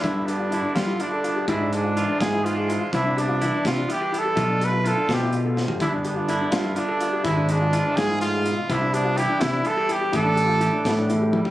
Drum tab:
HH |x-x-x-x-x-x-|x-x-x-x-x-x-|x-x-x-x-x-x-|x-x-x-x-x---|
SD |------o-----|------o-----|------o-----|------o---o-|
T1 |------------|------------|------------|------------|
FT |------------|------------|------------|-----------o|
BD |o-----o-----|o-----o-----|o-----o-----|o-----o-----|

HH |x-x-x-x-x-x-|x-x-x-x-x-x-|x-x-x-x-x-x-|x-x-x-x-x---|
SD |------o-----|------o-----|------o-----|------o-----|
T1 |------------|------------|------------|----------o-|
FT |------------|------------|------------|-----------o|
BD |o-----o-----|o-----o-----|o-----o-----|o-----o-----|